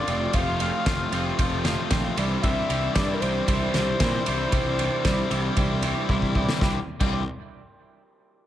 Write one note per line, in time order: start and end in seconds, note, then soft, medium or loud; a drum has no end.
0.00 0.36 D5 loud
0.08 0.26 F1 loud
0.08 0.32 F2 medium
0.08 0.33 C3 medium
0.08 0.33 F3 loud
0.08 0.34 A3 loud
0.08 0.35 C4 loud
0.08 0.35 F4 medium
0.08 ride medium
0.33 0.70 F1 medium
0.33 0.59 F2 medium
0.33 0.60 C3 medium
0.33 0.60 F3 loud
0.33 0.60 A3 loud
0.33 0.62 C4 medium
0.33 0.62 F4 medium
0.33 0.60 F5 loud
0.33 kick loud
0.33 ride medium
0.60 0.85 F2 medium
0.60 0.86 C3 medium
0.60 0.87 F3 medium
0.60 0.87 A3 medium
0.60 0.88 C4 medium
0.60 0.88 F4 loud
0.60 1.61 F5 loud
0.60 ride medium
0.86 1.04 F1 medium
0.86 1.11 F2 medium
0.86 1.12 C3 medium
0.86 1.12 F3 medium
0.86 1.13 A3 loud
0.86 1.14 C4 medium
0.86 1.14 F4 medium
0.86 kick loud
0.86 snare loud
0.86 ride medium
1.12 1.30 F1 medium
1.12 1.37 F2 medium
1.12 1.38 C3 medium
1.12 1.39 F3 medium
1.12 1.39 A3 medium
1.12 1.40 C4 loud
1.12 1.40 F4 medium
1.12 ride medium
1.38 1.75 F1 loud
1.38 1.63 F2 medium
1.38 1.64 C3 loud
1.38 1.65 F3 loud
1.38 1.65 A3 loud
1.38 1.66 C4 loud
1.38 1.66 F4 loud
1.38 kick loud
1.38 ride loud
1.65 1.89 F2 medium
1.65 1.90 C3 medium
1.65 1.90 F3 medium
1.65 1.91 A3 medium
1.65 1.92 C4 medium
1.65 1.92 F4 medium
1.65 snare medium
1.65 ride medium
1.90 2.09 A#1 loud
1.90 2.15 F2 medium
1.90 2.16 C3 medium
1.90 2.16 F3 medium
1.90 2.16 A3 medium
1.90 2.18 C4 loud
1.90 2.17 F4 loud
1.90 kick loud
1.90 snare loud
1.90 ride medium
2.17 2.35 C2 medium
2.17 2.43 C3 loud
2.17 2.44 E3 loud
2.17 2.44 G3 medium
2.17 2.45 C4 medium
2.17 2.44 D4 medium
2.17 2.45 E4 loud
2.17 ride medium
2.42 2.62 C2 loud
2.42 2.69 C3 loud
2.42 2.70 E3 medium
2.42 2.70 G3 medium
2.42 2.71 C4 medium
2.42 2.70 D4 loud
2.42 2.71 E4 loud
2.42 2.95 E5 loud
2.42 kick loud
2.42 ride medium
2.69 2.87 C2 medium
2.69 2.95 C3 medium
2.69 2.96 E3 medium
2.69 2.96 G3 medium
2.69 2.97 C4 loud
2.69 2.96 D4 loud
2.69 2.97 E4 loud
2.69 ride medium
2.94 3.14 G2 medium
2.94 3.22 C3 medium
2.94 3.22 E3 medium
2.94 3.23 G3 loud
2.94 3.23 C4 loud
2.94 3.22 D4 medium
2.94 3.24 E4 loud
2.94 3.14 D5 loud
2.94 kick loud
2.94 snare loud
2.94 ride loud
3.14 3.22 A#4 medium
3.20 3.40 C2 medium
3.20 3.47 C3 medium
3.20 3.48 E3 medium
3.20 3.48 G3 loud
3.20 3.49 C4 loud
3.20 3.48 D4 medium
3.20 3.50 E4 medium
3.20 6.09 C5 loud
3.20 ride medium
3.48 3.66 C2 medium
3.48 3.74 C3 medium
3.48 3.75 E3 loud
3.48 3.75 G3 medium
3.48 3.75 C4 loud
3.48 3.74 D4 loud
3.48 3.76 E4 loud
3.48 kick loud
3.48 ride loud
3.74 3.92 C2 medium
3.74 3.99 C3 medium
3.74 4.00 E3 medium
3.74 4.00 G3 medium
3.74 4.00 C4 medium
3.74 4.01 D4 medium
3.74 4.01 E4 medium
3.74 snare medium
3.74 ride medium
4.00 4.18 A#2 loud
4.00 4.25 C3 medium
4.00 4.25 E3 medium
4.00 4.26 G3 medium
4.00 4.26 C4 loud
4.00 4.27 D4 medium
4.00 4.27 E4 medium
4.00 kick loud
4.00 snare loud
4.00 ride medium
4.26 4.45 C2 medium
4.26 4.51 C3 medium
4.26 4.52 E3 medium
4.26 4.52 G3 medium
4.26 4.53 C4 medium
4.26 4.52 D4 medium
4.26 4.53 E4 medium
4.26 ride medium
4.52 4.88 C2 loud
4.52 4.77 C3 loud
4.52 4.78 E3 medium
4.52 4.78 G3 loud
4.52 4.79 C4 loud
4.52 4.78 D4 medium
4.52 4.79 E4 loud
4.52 kick loud
4.52 ride medium
4.79 5.03 C3 medium
4.79 5.03 E3 medium
4.79 5.04 G3 medium
4.79 5.04 C4 medium
4.79 5.04 D4 loud
4.79 5.04 E4 medium
4.79 ride medium
5.04 5.23 C2 medium
5.04 5.29 C3 medium
5.04 5.29 E3 medium
5.04 5.30 G3 medium
5.04 5.31 C4 loud
5.04 5.30 D4 loud
5.04 5.31 E4 medium
5.04 kick loud
5.04 snare loud
5.04 ride medium
5.30 5.48 C2 medium
5.30 5.55 C3 medium
5.30 5.55 E3 medium
5.30 5.56 G3 medium
5.30 5.56 C4 medium
5.30 5.57 D4 loud
5.30 5.57 E4 medium
5.30 ride medium
5.56 5.93 C2 loud
5.56 5.81 C3 medium
5.56 5.82 E3 loud
5.56 5.82 G3 loud
5.56 5.83 C4 loud
5.56 5.82 D4 loud
5.56 5.84 E4 loud
5.56 kick loud
5.56 ride medium
5.82 6.07 C3 medium
5.82 6.08 E3 medium
5.82 6.09 G3 medium
5.82 6.09 C4 medium
5.82 6.08 D4 loud
5.82 6.10 E4 medium
5.82 ride medium
6.09 6.45 C2 loud
6.09 6.33 C3 medium
6.09 6.34 E3 medium
6.09 6.35 G3 medium
6.09 6.35 C4 medium
6.09 6.35 D4 medium
6.09 6.36 E4 loud
6.09 kick loud
6.22 kick medium
6.35 6.60 C3 medium
6.35 6.60 E3 medium
6.35 6.60 G3 medium
6.35 6.60 C4 medium
6.35 6.60 D4 medium
6.35 6.61 E4 medium
6.35 kick medium
6.48 snare medium
6.61 6.76 C2 loud
6.61 6.77 C3 medium
6.61 6.77 E3 medium
6.61 6.77 G3 medium
6.61 6.78 C4 loud
6.61 6.78 D4 loud
6.61 6.78 E4 loud
6.61 6.78 G4 loud
6.61 kick loud
6.61 snare medium
7.00 7.25 C2 medium
7.00 7.21 C3 medium
7.00 7.22 E3 loud
7.00 7.22 G3 medium
7.00 7.22 C4 loud
7.00 7.22 D4 loud
7.00 7.22 E4 loud
7.00 7.22 G4 loud
7.00 kick loud
7.00 crash medium